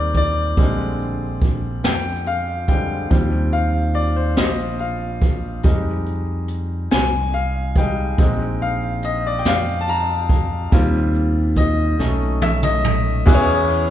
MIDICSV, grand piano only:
0, 0, Header, 1, 2, 480
1, 0, Start_track
1, 0, Key_signature, -3, "major"
1, 0, Tempo, 846262
1, 323, Time_signature, 6, 3, 24, 8
1, 7885, End_track
2, 0, Start_track
2, 0, Title_t, "Grand piano"
2, 0, Program_c, 0, 0
2, 0, Control_c, 0, 64, 127
2, 0, Note_on_c, 0, 55, 46
2, 0, Note_on_c, 0, 58, 41
2, 0, Note_on_c, 0, 60, 48
2, 0, Note_on_c, 0, 70, 84
2, 0, Note_on_c, 0, 72, 85
2, 0, Note_on_c, 0, 74, 88
2, 89, Note_off_c, 0, 74, 0
2, 98, Note_on_c, 0, 74, 84
2, 327, Note_on_c, 0, 50, 47
2, 329, Note_off_c, 0, 55, 0
2, 329, Note_on_c, 0, 55, 45
2, 330, Control_c, 0, 64, 0
2, 332, Note_off_c, 0, 58, 0
2, 332, Note_off_c, 0, 60, 0
2, 332, Note_on_c, 0, 56, 50
2, 332, Note_on_c, 0, 60, 58
2, 334, Note_off_c, 0, 70, 0
2, 334, Note_off_c, 0, 72, 0
2, 429, Control_c, 0, 64, 127
2, 547, Note_off_c, 0, 74, 0
2, 1022, Note_off_c, 0, 50, 0
2, 1023, Note_off_c, 0, 55, 0
2, 1024, Note_off_c, 0, 60, 0
2, 1025, Note_off_c, 0, 56, 0
2, 1045, Note_on_c, 0, 79, 81
2, 1289, Note_on_c, 0, 77, 79
2, 1291, Note_off_c, 0, 79, 0
2, 1520, Note_on_c, 0, 50, 42
2, 1522, Note_on_c, 0, 55, 33
2, 1524, Note_on_c, 0, 56, 33
2, 1524, Note_on_c, 0, 79, 79
2, 1525, Note_on_c, 0, 60, 43
2, 1533, Note_off_c, 0, 77, 0
2, 1738, Note_off_c, 0, 50, 0
2, 1740, Note_off_c, 0, 55, 0
2, 1741, Note_off_c, 0, 56, 0
2, 1741, Note_off_c, 0, 60, 0
2, 1759, Note_on_c, 0, 53, 49
2, 1761, Note_on_c, 0, 55, 47
2, 1766, Note_on_c, 0, 60, 53
2, 1770, Control_c, 0, 64, 0
2, 1856, Control_c, 0, 64, 127
2, 2001, Note_on_c, 0, 77, 77
2, 2017, Note_off_c, 0, 79, 0
2, 2240, Note_on_c, 0, 74, 74
2, 2249, Note_off_c, 0, 77, 0
2, 2361, Note_on_c, 0, 72, 60
2, 2365, Note_off_c, 0, 74, 0
2, 2458, Note_off_c, 0, 53, 0
2, 2459, Note_off_c, 0, 55, 0
2, 2461, Note_off_c, 0, 60, 0
2, 2483, Note_on_c, 0, 75, 74
2, 2485, Note_off_c, 0, 72, 0
2, 2706, Note_off_c, 0, 75, 0
2, 2724, Note_on_c, 0, 77, 67
2, 2946, Note_off_c, 0, 77, 0
2, 3197, Note_on_c, 0, 55, 47
2, 3200, Note_on_c, 0, 56, 49
2, 3202, Note_on_c, 0, 63, 54
2, 3210, Control_c, 0, 64, 0
2, 3326, Control_c, 0, 64, 127
2, 3519, Note_off_c, 0, 55, 0
2, 3520, Note_off_c, 0, 56, 0
2, 3521, Note_off_c, 0, 63, 0
2, 3922, Note_on_c, 0, 80, 83
2, 4163, Note_on_c, 0, 77, 76
2, 4169, Note_off_c, 0, 80, 0
2, 4386, Note_off_c, 0, 77, 0
2, 4409, Note_on_c, 0, 55, 43
2, 4411, Note_on_c, 0, 79, 73
2, 4412, Note_on_c, 0, 56, 42
2, 4413, Note_on_c, 0, 63, 48
2, 4623, Note_off_c, 0, 55, 0
2, 4624, Note_off_c, 0, 56, 0
2, 4625, Note_off_c, 0, 63, 0
2, 4647, Note_on_c, 0, 56, 53
2, 4649, Control_c, 0, 64, 0
2, 4651, Note_on_c, 0, 60, 51
2, 4652, Note_on_c, 0, 63, 55
2, 4743, Control_c, 0, 64, 127
2, 4890, Note_on_c, 0, 77, 78
2, 4901, Note_off_c, 0, 79, 0
2, 5110, Note_off_c, 0, 77, 0
2, 5131, Note_on_c, 0, 75, 78
2, 5250, Note_off_c, 0, 75, 0
2, 5256, Note_on_c, 0, 74, 69
2, 5284, Note_off_c, 0, 74, 0
2, 5327, Note_on_c, 0, 79, 63
2, 5342, Note_off_c, 0, 56, 0
2, 5344, Note_off_c, 0, 60, 0
2, 5345, Note_off_c, 0, 63, 0
2, 5364, Note_off_c, 0, 79, 0
2, 5375, Note_on_c, 0, 77, 87
2, 5556, Note_off_c, 0, 77, 0
2, 5563, Note_on_c, 0, 81, 72
2, 5603, Note_off_c, 0, 81, 0
2, 5612, Note_on_c, 0, 82, 85
2, 5831, Note_off_c, 0, 82, 0
2, 6080, Note_on_c, 0, 55, 59
2, 6081, Note_on_c, 0, 60, 56
2, 6086, Note_on_c, 0, 65, 61
2, 6091, Control_c, 0, 64, 0
2, 6191, Control_c, 0, 64, 127
2, 6565, Note_on_c, 0, 75, 86
2, 6779, Note_off_c, 0, 55, 0
2, 6780, Note_off_c, 0, 60, 0
2, 6782, Note_off_c, 0, 65, 0
2, 6802, Note_on_c, 0, 57, 50
2, 6808, Note_on_c, 0, 61, 47
2, 6810, Note_on_c, 0, 63, 58
2, 6811, Control_c, 0, 64, 0
2, 6920, Control_c, 0, 64, 127
2, 7047, Note_on_c, 0, 76, 94
2, 7059, Note_off_c, 0, 75, 0
2, 7122, Note_off_c, 0, 57, 0
2, 7125, Note_off_c, 0, 61, 0
2, 7126, Note_off_c, 0, 63, 0
2, 7168, Note_on_c, 0, 75, 93
2, 7169, Note_off_c, 0, 76, 0
2, 7503, Note_off_c, 0, 75, 0
2, 7519, Note_on_c, 0, 59, 81
2, 7524, Note_on_c, 0, 61, 77
2, 7526, Note_on_c, 0, 52, 63
2, 7527, Note_on_c, 0, 64, 74
2, 7528, Note_on_c, 0, 68, 75
2, 7531, Control_c, 0, 64, 0
2, 7532, Note_on_c, 0, 71, 71
2, 7565, Note_off_c, 0, 71, 0
2, 7569, Note_on_c, 0, 73, 84
2, 7619, Control_c, 0, 64, 127
2, 7885, Note_off_c, 0, 52, 0
2, 7885, Note_off_c, 0, 59, 0
2, 7885, Note_off_c, 0, 61, 0
2, 7885, Note_off_c, 0, 64, 0
2, 7885, Note_off_c, 0, 68, 0
2, 7885, Note_off_c, 0, 73, 0
2, 7885, End_track
0, 0, End_of_file